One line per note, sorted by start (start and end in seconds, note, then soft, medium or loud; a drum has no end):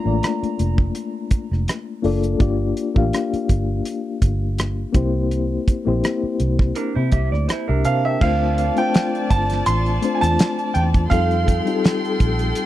0.00 0.06 A3 medium
0.00 0.04 A#3 medium
0.00 1.29 A#3 medium
0.00 0.05 D4 medium
0.00 0.06 F4 medium
0.00 0.07 D5 medium
0.00 0.74 A#5 loud
0.05 0.20 A1 medium
0.05 1.30 A3 medium
0.05 1.29 D4 medium
0.05 1.30 F4 medium
0.05 1.31 D5 medium
0.23 cross-stick loud
0.23 closed hi-hat medium
0.43 muted fingered electric bass stroke soft
0.43 closed hi-hat soft
0.59 0.90 F1 medium
0.59 closed hi-hat medium
0.78 kick medium
0.95 closed hi-hat medium
1.31 muted fingered electric bass stroke soft
1.31 kick medium
1.31 closed hi-hat medium
1.51 1.65 F1 medium
1.51 cross-stick soft
1.68 cross-stick loud
1.68 closed hi-hat medium
2.02 2.35 F#1 loud
2.02 2.35 A#3 medium
2.02 2.35 D4 medium
2.02 2.35 F4 medium
2.02 2.36 A4 medium
2.02 2.36 D5 medium
2.02 open hi-hat soft
2.23 closed hi-hat soft
2.38 2.71 G1 medium
2.38 2.87 A#3 medium
2.38 2.88 D4 medium
2.38 2.88 F4 medium
2.38 2.89 G4 medium
2.38 2.89 D5 medium
2.38 kick loud
2.38 closed hi-hat medium
2.77 closed hi-hat medium
2.94 3.10 A1 medium
2.94 4.20 A#3 medium
2.94 4.20 D4 medium
2.94 4.20 F4 medium
2.94 4.21 G4 medium
2.94 4.21 F5 medium
2.94 kick medium
3.13 cross-stick medium
3.13 closed hi-hat medium
3.33 muted fingered electric bass stroke soft
3.33 closed hi-hat soft
3.49 3.80 G1 medium
3.49 kick medium
3.49 closed hi-hat medium
3.85 closed hi-hat medium
4.22 4.84 G1 medium
4.22 kick medium
4.22 closed hi-hat medium
4.58 cross-stick loud
4.58 closed hi-hat medium
4.92 5.57 C2 medium
4.92 5.72 A#3 medium
4.92 5.73 C4 medium
4.92 5.73 E4 medium
4.92 5.74 G4 medium
4.92 5.74 C5 loud
4.92 kick medium
4.92 closed hi-hat medium
5.31 closed hi-hat medium
5.68 kick medium
5.68 closed hi-hat medium
5.85 6.01 A#1 medium
5.85 7.10 A#3 medium
5.85 7.10 C4 medium
5.85 7.11 E4 medium
5.85 7.11 G4 medium
5.85 7.12 C5 medium
6.04 cross-stick loud
6.04 closed hi-hat medium
6.23 muted fingered electric bass stroke soft
6.40 6.71 C2 medium
6.40 closed hi-hat medium
6.59 kick medium
6.59 cross-stick soft
6.76 6.95 D4 soft
6.76 6.95 A#4 medium
6.76 closed hi-hat medium
6.96 7.10 C3 medium
6.96 7.12 E4 medium
6.96 7.11 C5 medium
7.12 7.29 C2 medium
7.12 7.31 G4 medium
7.12 7.31 E5 medium
7.12 kick medium
7.12 closed hi-hat medium
7.32 7.46 D2 medium
7.32 7.48 D5 medium
7.32 cross-stick soft
7.48 7.67 E4 medium
7.48 7.67 C5 medium
7.48 muted fingered electric bass stroke soft
7.48 cross-stick medium
7.48 closed hi-hat medium
7.68 7.83 C2 medium
7.68 8.19 D4 soft
7.68 7.85 G4 soft
7.68 8.18 A#4 medium
7.68 7.84 E5 medium
7.85 8.16 C3 medium
7.85 8.04 C5 medium
7.85 8.03 F5 medium
7.85 8.04 A5 medium
7.85 closed hi-hat medium
8.05 8.39 A#4 soft
8.05 8.22 E5 medium
8.05 8.39 G5 medium
8.20 8.69 D2 medium
8.20 8.69 A3 medium
8.20 8.69 C4 medium
8.20 8.69 D4 medium
8.20 11.07 F4 medium
8.20 8.70 F4 medium
8.20 8.70 C5 medium
8.20 11.07 D5 medium
8.20 8.79 F5 medium
8.20 11.07 A5 medium
8.20 kick medium
8.20 crash medium
8.58 closed hi-hat medium
8.76 9.86 A3 medium
8.76 9.87 C4 medium
8.76 9.87 D4 medium
8.76 9.88 F4 medium
8.76 9.88 C5 medium
8.76 9.32 G5 medium
8.76 closed hi-hat soft
8.94 snare loud
8.94 closed hi-hat medium
9.15 closed hi-hat soft
9.30 9.61 G1 medium
9.30 9.68 A5 medium
9.30 kick medium
9.30 closed hi-hat medium
9.50 snare soft
9.50 closed hi-hat medium
9.66 9.98 A1 medium
9.66 10.16 C6 loud
9.66 closed hi-hat medium
9.86 closed hi-hat soft
10.02 10.98 A3 medium
10.02 10.98 C4 medium
10.02 10.98 D4 medium
10.02 10.99 F4 medium
10.02 10.99 C5 medium
10.02 closed hi-hat medium
10.15 10.22 G#5 medium
10.21 10.37 E2 medium
10.21 10.71 A5 loud
10.21 closed hi-hat medium
10.39 snare loud
10.39 closed hi-hat medium
10.59 closed hi-hat soft
10.74 11.06 E2 loud
10.74 10.82 G5 medium
10.74 closed hi-hat medium
10.94 kick medium
10.94 closed hi-hat soft
11.09 11.59 F2 loud
11.09 11.58 G3 medium
11.09 11.59 C4 medium
11.09 11.59 D#4 medium
11.09 11.60 F4 medium
11.09 12.66 A4 medium
11.09 11.60 A4 medium
11.09 12.66 F5 medium
11.09 12.66 G5 medium
11.09 12.66 C6 medium
11.09 kick medium
11.09 closed hi-hat medium
11.31 closed hi-hat soft
11.48 kick medium
11.48 closed hi-hat medium
11.65 12.66 G3 medium
11.65 12.66 C4 medium
11.65 12.66 D#4 medium
11.65 12.66 F4 medium
11.65 11.74 G4 medium
11.65 closed hi-hat soft
11.75 12.66 A4 medium
11.84 snare loud
11.84 closed hi-hat medium
12.05 closed hi-hat soft
12.20 12.51 A#1 medium
12.20 kick medium
12.20 closed hi-hat medium
12.39 closed hi-hat medium
12.55 closed hi-hat medium